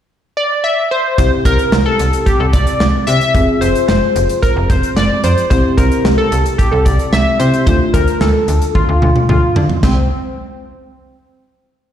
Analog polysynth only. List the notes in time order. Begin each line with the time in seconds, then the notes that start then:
0.37 D5
0.64 E5
0.91 C5
1.18 C5
1.46 A#4
1.86 A4
2.26 G4
2.40 A4
2.53 D5
3.07 E5
3.61 C5
3.88 C5
4.42 A#4
4.70 C5
4.96 D5
5.24 C5
5.50 C5
5.77 A#4
6.18 A4
6.58 G4
6.72 A4
6.85 D5
7.13 E5
7.39 C5
7.66 C5
7.94 A#4
8.21 A4
8.75 F4
9.29 F4
9.83 C4